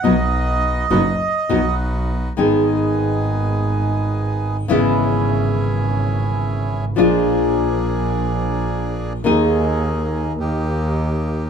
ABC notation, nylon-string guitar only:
X:1
M:4/4
L:1/8
Q:1/4=104
K:B
V:1 name="Nylon-string guitar"
[B,,F,B,DF] z2 [B,,F,B,DF] z [B,,F,B,DF] z2 | [K:G#m] [D,G,B,DG]8 | [C,E,G,B,E]8 | [^E,G,=D^E]8 |
[D,A,DG]4 z4 |]